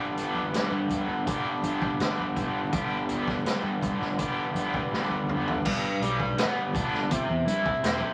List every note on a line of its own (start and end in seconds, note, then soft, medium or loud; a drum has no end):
0.00 0.46 G1 medium
0.00 1.26 G2 medium
0.00 1.25 D3 medium
0.00 1.27 G3 medium
0.00 1.28 B3 medium
0.00 1.28 D4 medium
0.00 1.29 G4 medium
0.17 closed hi-hat medium
0.34 high conga medium
0.54 0.70 G2 medium
0.54 snare loud
0.54 closed hi-hat medium
0.71 1.04 G2 medium
0.90 closed hi-hat medium
0.90 high conga medium
0.90 low conga medium
1.08 1.41 G1 medium
1.26 2.71 G2 medium
1.26 2.71 D3 medium
1.26 2.73 G3 medium
1.26 2.73 B3 medium
1.26 2.74 D4 medium
1.26 2.74 G4 medium
1.26 kick medium
1.26 closed hi-hat medium
1.62 1.80 G1 medium
1.62 closed hi-hat medium
1.62 high conga medium
1.81 kick medium
1.81 high conga medium
1.99 2.65 G1 medium
1.99 snare loud
1.99 closed hi-hat medium
2.18 high conga medium
2.36 kick medium
2.36 closed hi-hat medium
2.36 low conga medium
2.72 3.38 G1 medium
2.72 4.16 G2 medium
2.72 4.16 D3 medium
2.72 4.17 G3 medium
2.72 4.17 B3 medium
2.72 4.17 D4 medium
2.72 4.18 G4 medium
2.72 kick loud
2.72 closed hi-hat medium
3.09 closed hi-hat medium
3.09 low conga medium
3.26 kick medium
3.26 snare soft
3.26 high conga medium
3.45 3.62 G2 medium
3.45 snare loud
3.45 closed hi-hat medium
3.63 3.96 G2 medium
3.82 kick medium
3.82 closed hi-hat medium
3.82 high conga medium
3.82 low conga medium
4.01 4.33 G1 medium
4.01 snare soft
4.18 5.62 G2 medium
4.18 5.62 D3 medium
4.18 5.63 G3 medium
4.18 5.63 B3 medium
4.18 5.63 D4 medium
4.18 5.63 G4 medium
4.18 kick medium
4.18 closed hi-hat medium
4.18 low conga medium
4.54 4.71 G1 medium
4.54 closed hi-hat medium
4.54 high conga medium
4.74 kick medium
4.92 5.57 G1 medium
4.92 snare medium
5.09 high conga medium
5.27 mid tom medium
5.27 low conga medium
5.48 floor tom medium
5.65 5.81 G1 medium
5.65 7.10 G2 medium
5.65 kick loud
5.65 crash loud
6.00 6.33 B1 medium
6.00 7.11 G3 medium
6.00 closed hi-hat medium
6.20 kick medium
6.38 7.10 B3 medium
6.38 snare loud
6.38 closed hi-hat loud
6.73 7.07 G1 medium
6.73 7.11 D4 medium
6.73 kick medium
6.73 closed hi-hat medium
6.73 high conga medium
6.73 low conga medium
6.94 snare soft
7.11 7.27 G1 loud
7.11 8.14 C3 medium
7.11 kick medium
7.11 closed hi-hat medium
7.29 7.45 E2 medium
7.46 7.63 G2 medium
7.46 8.14 E4 medium
7.46 closed hi-hat medium
7.46 high conga medium
7.65 kick medium
7.65 low conga medium
7.83 7.99 E1 medium
7.83 8.14 C4 medium
7.83 snare loud
7.83 closed hi-hat loud
8.01 high conga medium